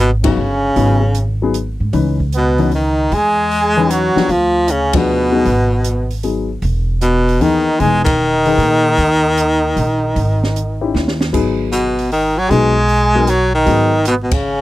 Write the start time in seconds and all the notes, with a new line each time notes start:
Already playing: G#1
0.00 B2
0.23 C#3 F#3 B3 C#4 D#4 F#4, kick, ride
0.36 G1
0.76 G#1 F#3 B3 D#4 G#4, kick, open hi-hat
1.15 closed hi-hat
1.42 F#3 B3 D#4 G#4
1.54 closed hi-hat
1.80 G#2
1.93 C#2 E3 C#4 D#4 B4, kick, open hi-hat
2.20 kick
2.32 B3, closed hi-hat
2.37 B2
2.58 E3 C#4 D#4 B4, open hi-hat
2.71 D#3 D#4, open hi-hat
3.12 E2 G#3 G#4, kick, open hi-hat
3.51 open hi-hat
3.77 E3 C#4 D#4 B4
3.90 F#3 F#4, closed hi-hat
4.16 F3 B3 D4 G4, muted upright bass stroke, snare
4.29 D2 F3 F4, kick, open hi-hat
4.68 C#3 C#4, closed hi-hat
4.93 B2 F3 B3 D4 G#4, kick, ride
5.32 F#3 B3 D#4 G#4
5.45 G#1, kick, open hi-hat
5.84 closed hi-hat
6.11 open hi-hat
6.23 F#3 B3 D#4 G#4, open hi-hat
6.62 E1, kick, open hi-hat
7.01 B2 B3, closed hi-hat
7.29 open hi-hat
7.41 D#2 D#3 E3 B3 D#4 G#4, open hi-hat
7.80 E1 E3 G#3 B3 D#4 G#4, kick, open hi-hat
8.04 D#3 D#4, kick, ride
8.46 D#3 D#4 G#4 B4, open hi-hat
8.58 A#2, open hi-hat
8.97 D#2, kick, open hi-hat
9.37 closed hi-hat
9.76 A#1, open hi-hat
10.16 G#1, kick, open hi-hat
10.44 snare
10.56 closed hi-hat
10.81 C#4 D#4 E4 G4
10.94 D#2, snare
11.08 snare
11.21 snare
11.33 G#1 F#3 B3 D#4 G#4, kick, crash
11.72 B2 B3, closed hi-hat
11.99 open hi-hat
12.11 D#3 D#4, open hi-hat
12.36 F#3 F#4
12.50 B1 F#3 G#3 B3 D#4 G#4, kick, open hi-hat
12.88 open hi-hat
13.15 F#3 B3 D#4 A#4
13.27 F#3 F#4, closed hi-hat
13.54 D#3 D#4
13.66 G#1 F#3 B3 D#4 G#4, kick, open hi-hat
14.05 B2 B3, closed hi-hat
14.23 B2 B3
14.31 C#3 C#4, kick, ride